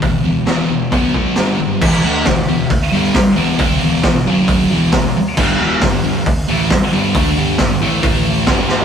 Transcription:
<<
  \new Staff \with { instrumentName = "Distorted electric guitar" } { \clef bass \time 4/4 \key e \minor \tempo 4 = 135 <e, b,>8 <e, b,>8 <e, b, e>8 <e, b,>8 <b, fis b>8 <b, fis b>8 <g, d g>8 <g, d>8 | <e, b, e>8 <d a d'>8 <e, b,>8 <e, b,>8 r8 <g, d g>8 r8 <e, b, e>8 | <c g c'>8 <e, b, e>8 <e, b,>8 <fis, cis fis>4 <e, b, e>8 <e, b,>8 r8 | <g, d g>8 <e, b, e>8 <g, d>8 <g, d>8 r8 <a, e a>8 r8 <g, d g>8 |
<d a d'>8 <g, d g>8 <g, d>8 <a, e a>8 <a, e a>4 <g, d g>4 | }
  \new Staff \with { instrumentName = "Fingered electric bass" } { \clef bass \time 4/4 \key e \minor e,,8 e,,8 e,,8 e,,8 b,,4 g,,8 fis,,8 | e,,8 d,8 e,,8 e,,8 r8 g,,8 r8 e,,8 | c,8 e,,8 e,,8 fis,,4 e,,8 e,,8 r8 | g,,8 e,,8 g,,8 g,,8 r8 a,,8 r8 g,,8 |
d,8 g,,8 g,,8 a,,8 a,,4 g,,4 | }
  \new DrumStaff \with { instrumentName = "Drums" } \drummode { \time 4/4 <hho bd>4 <hho sn>4 <hho bd>8 bd8 <hho sn>4 | <cymc bd>4 <hho bd sn>4 <hho bd>4 <hho bd sn>4 | <hho bd>4 <hho bd sn>4 <hho bd>4 <hho bd sn>4 | <cymc bd>4 <hho bd sn>4 <hho bd>4 <hho bd sn>4 |
<hho bd>4 <hho bd sn>4 <hho bd>4 <hho bd sn>8 sn16 tomfh16 | }
>>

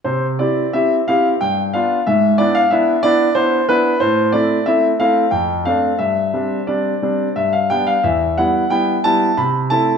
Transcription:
\new Staff \with { instrumentName = "Grand piano" } { \time 3/4 \key c \major \tempo 4 = 90 << { c''8 d''8 e''8 f''8 g''8 f''8 | e''8 d''16 f''16 e''8 d''8 c''8 b'8 | c''8 d''8 e''8 f''8 g''8 f''8 | e''4 d''4 e''16 f''16 g''16 f''16 |
\key e \minor e''8 fis''8 g''8 a''8 b''8 a''8 | } \\ { c8 <c' e' g'>8 <c' e' g'>8 <c' e' g'>8 g,8 <b d' f'>8 | gis,8 <b d' e'>8 <b d' e'>8 <b d' e'>8 <b d' e'>8 <b d' e'>8 | a,8 <a c' e'>8 <a c' e'>8 <a c' e'>8 f,8 <a c' d'>8 | g,8 <g c' d'>8 <g c' d'>8 <g c' d'>8 g,8 <g b d'>8 |
e,8 <g b e'>8 <g b e'>8 <g b e'>8 c8 <a c' e'>8 | } >> }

